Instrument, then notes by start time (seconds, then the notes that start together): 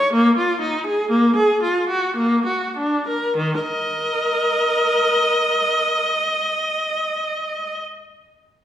viola
Already playing: C#5
0.13 A#3
0.38 F4
0.61 D#4
0.86 G#4
1.11 A#3
1.36 G#4
1.62 F4
1.89 F#4
2.17 A#3
2.46 F#4
2.77 D4
3.08 A#4
3.37 D#3
3.61 A#4 D#5